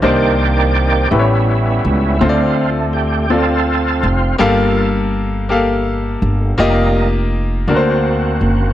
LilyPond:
<<
  \new Staff \with { instrumentName = "Grand piano" } { \time 6/8 \key d \phrygian \tempo 4. = 55 <bes d' ees' c''>4 r8 <a e' g' ces'' cis''>4 r8 | <c' f' a' c'' d''>4 r8 <c' f' a' d''>4 r8 | <bes g' a' f''>4 r8 <bes g' a' f''>4 r8 | <bes f' g' ees''>4 r8 <bes d' fis' bes' c''>4 r8 | }
  \new Staff \with { instrumentName = "Grand piano" } { \clef bass \time 6/8 \key d \phrygian c4. a,4. | d4. r4. | g,4. r4. | r4. d4. | }
  \new Staff \with { instrumentName = "Tonewheel organ" } { \time 6/8 \key d \phrygian << { g'4. e'4. | f'4 g'8 a'4 r8 | r2. | r2. | } \\ { c'4. r4. | c'4. <c' f'>4. | r2. | r2. | } >> }
  \new Staff \with { instrumentName = "Tonewheel organ" } { \time 6/8 \key d \phrygian <ees bes d''>4. <g ces' cis'>4. | a8 r2 r8 | <bes f' a'>8 r2 r8 | <g bes ees'>8 r4 <bes c' fis'>4. | }
  \new Staff \with { instrumentName = "Upright bass" } { \clef bass \time 6/8 \key d \phrygian c,4. a,,4 cis,8 | d,2~ d,8 f,,8 | g,,2~ g,,8 g,,8 | f,,4. d,4 fis,,8 | }
>>